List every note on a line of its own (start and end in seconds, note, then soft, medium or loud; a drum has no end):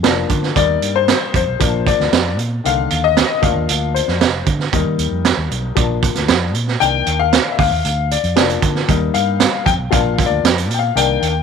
0.03 0.24 F1 loud
0.03 0.53 F3 medium
0.03 0.53 A#3 medium
0.03 0.54 D4 medium
0.03 snare loud
0.03 closed hi-hat medium
0.29 0.50 D3 medium
0.29 kick loud
0.29 closed hi-hat medium
0.43 snare soft
0.55 0.77 D#2 loud
0.55 1.56 G3 medium
0.55 1.56 A#3 medium
0.55 1.57 D#4 medium
0.55 0.97 D5 loud
0.55 kick medium
0.55 closed hi-hat medium
0.82 1.13 G2 medium
0.82 closed hi-hat medium
0.96 1.32 C5 loud
1.08 snare loud
1.08 closed hi-hat loud
1.34 1.44 F2 medium
1.34 1.89 C5 loud
1.34 kick medium
1.34 closed hi-hat medium
1.48 1.58 B1 medium
1.59 1.91 A#1 loud
1.59 2.34 F3 medium
1.59 2.35 A#3 medium
1.59 2.35 D4 medium
1.59 kick loud
1.59 closed hi-hat medium
1.87 2.35 D5 loud
1.87 kick medium
1.87 closed hi-hat medium
2.00 2.10 D2 medium
2.00 snare soft
2.12 2.38 F2 medium
2.12 snare loud
2.12 closed hi-hat medium
2.38 2.59 A#2 medium
2.38 closed hi-hat medium
2.64 2.85 C2 medium
2.64 3.39 D3 medium
2.64 3.39 D#3 medium
2.64 3.39 A#3 medium
2.64 3.06 F5 loud
2.64 closed hi-hat medium
2.90 3.22 D#2 medium
2.90 closed hi-hat medium
3.04 3.44 D#5 loud
3.17 snare loud
3.17 closed hi-hat loud
3.42 3.53 D2 medium
3.42 4.17 F3 medium
3.42 4.17 A#3 soft
3.42 4.17 D4 medium
3.42 3.91 F5 medium
3.42 kick loud
3.42 closed hi-hat medium
3.56 3.66 D#2 medium
3.69 4.00 D2 loud
3.69 closed hi-hat medium
3.94 4.43 C5 medium
3.94 closed hi-hat medium
4.08 4.23 F2 medium
4.08 snare soft
4.21 4.42 F1 medium
4.21 snare loud
4.21 closed hi-hat medium
4.47 4.67 D3 medium
4.47 kick loud
4.47 closed hi-hat medium
4.60 snare soft
4.72 4.83 D#2 medium
4.72 5.73 G3 medium
4.72 5.73 A#3 medium
4.72 5.73 D#4 medium
4.72 kick medium
4.72 closed hi-hat medium
4.85 4.96 D#3 medium
4.98 5.09 D#2 loud
4.98 closed hi-hat medium
5.11 5.32 F2 medium
5.25 snare loud
5.25 closed hi-hat loud
5.37 5.48 D#2 medium
5.51 5.71 B1 medium
5.51 closed hi-hat medium
5.75 6.07 A#1 loud
5.75 6.50 F3 medium
5.75 6.50 A#3 medium
5.75 6.51 D4 medium
5.75 kick loud
5.75 closed hi-hat medium
6.03 kick loud
6.03 closed hi-hat medium
6.15 6.26 D2 medium
6.15 snare soft
6.15 closed hi-hat soft
6.28 6.55 F2 medium
6.28 snare loud
6.28 closed hi-hat medium
6.55 6.76 A#2 medium
6.55 closed hi-hat medium
6.68 snare soft
6.80 7.01 C2 medium
6.80 7.55 D#3 medium
6.80 7.55 A#3 medium
6.80 7.55 D4 medium
6.80 7.17 G5 loud
6.80 closed hi-hat medium
7.06 7.37 D#2 medium
7.06 closed hi-hat medium
7.20 7.53 F5 loud
7.33 snare loud
7.33 closed hi-hat loud
7.52 7.59 E5 medium
7.59 7.69 D2 medium
7.59 8.13 F5 loud
7.59 kick loud
7.59 open hi-hat soft
7.71 7.82 D#2 medium
7.85 8.15 D2 loud
7.85 closed hi-hat medium
8.11 8.60 D5 medium
8.11 closed hi-hat medium
8.24 8.34 F2 medium
8.24 closed hi-hat soft
8.36 8.57 F1 loud
8.36 8.86 F3 medium
8.36 8.86 A#3 medium
8.36 8.86 D4 medium
8.36 snare loud
8.36 closed hi-hat medium
8.50 closed hi-hat medium
8.62 8.83 D3 medium
8.62 kick medium
8.62 closed hi-hat medium
8.75 snare soft
8.88 9.09 D#2 loud
8.88 9.62 G3 medium
8.88 9.63 A#3 medium
8.88 9.63 D#4 medium
8.88 kick medium
8.88 closed hi-hat medium
9.14 9.45 G2 medium
9.14 9.63 F5 loud
9.14 closed hi-hat medium
9.40 snare loud
9.40 closed hi-hat loud
9.66 9.77 F2 medium
9.66 9.72 G5 loud
9.66 kick loud
9.66 closed hi-hat medium
9.79 9.89 B1 medium
9.90 10.23 A#1 loud
9.90 10.65 F3 medium
9.90 10.66 A#3 medium
9.90 10.66 D4 medium
9.90 10.28 F5 loud
9.90 kick loud
9.90 closed hi-hat medium
10.19 kick medium
10.19 closed hi-hat medium
10.26 10.76 D5 medium
10.30 10.41 D2 medium
10.44 10.70 F2 medium
10.44 snare loud
10.44 closed hi-hat medium
10.58 closed hi-hat medium
10.70 10.91 A#2 medium
10.70 closed hi-hat medium
10.74 10.79 G5 medium
10.79 10.97 F5 medium
10.95 11.16 C2 loud
10.95 11.30 D#3 medium
10.95 11.31 A#3 medium
10.95 11.31 D4 medium
10.95 11.43 G5 loud
10.95 closed hi-hat medium
11.22 11.43 D#2 medium
11.22 closed hi-hat medium